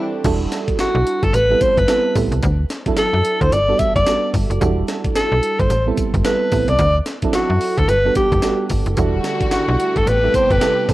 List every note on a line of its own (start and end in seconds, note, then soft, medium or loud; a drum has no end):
0.00 0.25 E3 medium
0.00 0.25 G3 medium
0.00 0.24 C4 medium
0.00 0.27 C4 medium
0.00 0.25 D4 medium
0.00 0.14 E4 medium
0.00 0.25 E4 medium
0.00 0.23 G4 medium
0.00 0.26 A4 medium
0.24 0.47 E1 loud
0.24 0.93 G3 loud
0.24 0.93 D4 medium
0.24 0.93 E4 medium
0.24 0.93 F#4 medium
0.24 0.93 A4 loud
0.24 kick loud
0.24 closed hi-hat medium
0.24 crash loud
0.24 tambourine medium
0.52 snare medium
0.52 closed hi-hat medium
0.52 tambourine medium
0.68 0.72 B1 soft
0.68 kick loud
0.68 closed hi-hat soft
0.79 1.25 F#4 medium
0.79 snare medium
0.79 closed hi-hat medium
0.79 tambourine medium
0.95 1.04 B1 loud
1.07 closed hi-hat medium
1.23 1.32 G1 medium
1.23 1.36 A4 loud
1.23 kick loud
1.23 closed hi-hat soft
1.33 1.55 A1 loud
1.33 1.64 B4 loud
1.33 closed hi-hat medium
1.33 tambourine medium
1.50 1.74 G3 medium
1.50 1.74 B3 medium
1.50 1.74 C4 medium
1.50 1.75 E4 medium
1.50 1.75 A4 medium
1.61 1.80 C5 loud
1.61 kick loud
1.61 closed hi-hat medium
1.61 tambourine medium
1.77 1.86 G1 loud
1.77 2.16 B4 loud
1.77 kick loud
1.77 closed hi-hat medium
1.88 2.07 G3 medium
1.88 2.07 B3 medium
1.88 2.07 C4 medium
1.88 2.07 E4 medium
1.88 2.07 A4 loud
1.88 snare loud
1.88 closed hi-hat medium
1.88 tambourine loud
2.16 2.29 A1 medium
2.16 2.43 G3 medium
2.16 2.43 B3 medium
2.16 2.43 C4 medium
2.16 2.43 E4 medium
2.16 2.43 A4 medium
2.16 kick loud
2.16 open hi-hat medium
2.16 tambourine medium
2.32 2.41 C2 medium
2.32 closed hi-hat medium
2.43 2.65 D2 loud
2.43 kick loud
2.43 closed hi-hat medium
2.43 tambourine medium
2.70 snare medium
2.70 closed hi-hat medium
2.70 tambourine medium
2.86 2.91 F#2 medium
2.86 3.35 F#3 medium
2.86 3.35 C4 medium
2.86 3.35 D4 medium
2.86 3.35 E4 medium
2.86 3.35 A4 loud
2.86 kick loud
2.86 closed hi-hat soft
2.97 3.43 A4 loud
2.97 snare medium
2.97 closed hi-hat medium
2.97 tambourine medium
3.13 3.22 F#2 medium
3.25 closed hi-hat medium
3.41 3.50 D2 loud
3.41 3.54 C5 loud
3.41 kick loud
3.41 closed hi-hat soft
3.52 3.74 G1 loud
3.52 3.81 D5 loud
3.52 closed hi-hat medium
3.52 tambourine medium
3.68 3.92 G3 medium
3.68 3.93 B3 medium
3.68 3.93 D4 medium
3.68 3.93 F#4 medium
3.68 3.93 A4 medium
3.79 3.95 E5 loud
3.79 kick loud
3.79 closed hi-hat medium
3.79 tambourine medium
3.96 4.04 F#1 medium
3.96 4.31 D5 loud
3.96 kick loud
3.96 closed hi-hat medium
4.06 4.40 G3 medium
4.06 4.41 B3 medium
4.06 4.41 D4 medium
4.06 4.41 F#4 medium
4.06 4.41 A4 medium
4.06 snare loud
4.06 closed hi-hat medium
4.06 tambourine loud
4.34 4.47 G1 loud
4.34 kick loud
4.34 open hi-hat medium
4.34 tambourine medium
4.50 4.59 F#1 medium
4.50 closed hi-hat medium
4.61 4.83 E1 loud
4.61 5.29 G3 loud
4.61 5.29 D4 medium
4.61 5.29 E4 medium
4.61 5.29 F#4 medium
4.61 5.29 A4 medium
4.61 kick loud
4.61 closed hi-hat medium
4.61 tambourine medium
4.88 snare medium
4.88 closed hi-hat medium
4.88 tambourine medium
5.04 5.09 B1 soft
5.04 kick loud
5.04 closed hi-hat medium
5.15 5.61 A4 loud
5.15 snare loud
5.15 closed hi-hat medium
5.15 tambourine medium
5.32 5.41 B1 loud
5.43 closed hi-hat medium
5.59 5.68 G1 loud
5.59 5.87 C5 loud
5.59 kick loud
5.59 closed hi-hat soft
5.70 5.92 A1 loud
5.70 closed hi-hat medium
5.70 tambourine medium
5.86 6.11 G3 medium
5.86 6.11 B3 medium
5.86 6.11 C4 medium
5.86 6.11 E4 medium
5.86 6.11 A4 medium
5.97 kick loud
5.97 closed hi-hat medium
5.97 tambourine medium
6.14 6.23 G1 loud
6.14 kick loud
6.14 closed hi-hat medium
6.25 6.43 G3 medium
6.25 6.43 B3 medium
6.25 6.44 C4 medium
6.25 6.44 E4 medium
6.25 6.44 A4 loud
6.25 6.71 B4 medium
6.25 snare loud
6.25 closed hi-hat medium
6.25 tambourine loud
6.52 6.65 A1 medium
6.52 6.79 G3 medium
6.52 6.79 B3 medium
6.52 6.79 C4 medium
6.52 6.80 E4 medium
6.52 6.80 A4 medium
6.52 kick loud
6.52 open hi-hat medium
6.52 tambourine medium
6.68 6.77 C2 medium
6.68 6.96 D5 loud
6.68 closed hi-hat medium
6.79 7.01 D2 loud
6.79 kick loud
6.79 closed hi-hat medium
6.79 tambourine medium
7.06 snare medium
7.06 closed hi-hat medium
7.06 tambourine medium
7.22 7.27 F#2 soft
7.22 7.71 F#3 medium
7.22 7.71 C4 medium
7.22 7.72 D4 medium
7.22 7.72 E4 medium
7.22 7.72 A4 medium
7.22 kick medium
7.22 closed hi-hat medium
7.33 7.80 F#4 loud
7.33 snare loud
7.33 closed hi-hat medium
7.33 tambourine medium
7.50 7.59 F#2 medium
7.61 open hi-hat medium
7.78 7.86 D2 loud
7.78 7.90 A4 loud
7.78 kick loud
7.78 closed hi-hat soft
7.88 8.10 G1 loud
7.88 8.16 B4 loud
7.88 closed hi-hat medium
7.88 tambourine medium
8.05 8.29 G3 medium
8.05 8.29 B3 medium
8.05 8.29 D4 medium
8.05 8.29 F#4 medium
8.05 8.29 A4 medium
8.15 8.67 G4 loud
8.15 kick loud
8.15 closed hi-hat medium
8.15 tambourine medium
8.32 8.41 F#1 loud
8.32 kick loud
8.32 closed hi-hat medium
8.42 8.77 G3 medium
8.42 8.77 B3 medium
8.42 8.77 D4 medium
8.42 8.77 F#4 medium
8.42 8.77 A4 medium
8.42 snare loud
8.42 closed hi-hat medium
8.42 tambourine loud
8.70 8.84 G1 medium
8.70 kick medium
8.70 open hi-hat medium
8.70 tambourine medium
8.86 8.95 F#1 medium
8.86 closed hi-hat medium
8.97 9.20 E1 loud
8.97 10.05 D3 medium
8.97 9.05 F#3 medium
8.97 10.05 G3 medium
8.97 10.94 A3 medium
8.97 9.65 D4 medium
8.97 9.66 E4 medium
8.97 10.05 F#4 medium
8.97 9.66 F#4 medium
8.97 9.66 A4 medium
8.97 kick loud
8.97 closed hi-hat medium
8.97 tambourine medium
9.04 9.69 G3 medium
9.24 snare medium
9.24 closed hi-hat medium
9.24 tambourine medium
9.41 9.45 B1 soft
9.41 kick loud
9.41 closed hi-hat medium
9.51 9.99 F#4 loud
9.51 snare loud
9.51 closed hi-hat medium
9.51 tambourine medium
9.68 9.77 B1 loud
9.80 closed hi-hat medium
9.96 10.05 G1 medium
9.96 10.09 A4 medium
9.96 kick loud
9.96 closed hi-hat soft
10.06 10.29 A1 loud
10.06 10.94 C3 medium
10.06 10.94 B3 medium
10.06 10.94 G4 medium
10.06 10.37 B4 loud
10.06 closed hi-hat medium
10.06 tambourine medium
10.23 10.47 G3 medium
10.23 10.47 B3 medium
10.23 10.47 C4 medium
10.23 10.47 E4 medium
10.23 10.48 A4 medium
10.34 10.53 C5 loud
10.34 kick loud
10.34 closed hi-hat medium
10.34 tambourine medium
10.50 10.59 G1 loud
10.50 10.89 B4 loud
10.50 kick loud
10.50 closed hi-hat medium
10.61 10.79 G3 medium
10.61 10.80 B3 medium
10.61 10.80 C4 medium
10.61 10.80 E4 medium
10.61 10.80 A4 loud
10.61 snare loud
10.61 closed hi-hat medium
10.61 tambourine loud
10.88 10.94 A1 medium
10.88 10.94 G3 medium
10.88 10.94 B3 medium
10.88 10.94 C4 medium
10.88 10.94 E4 medium
10.88 10.94 A4 loud
10.88 kick loud
10.88 open hi-hat medium
10.88 tambourine medium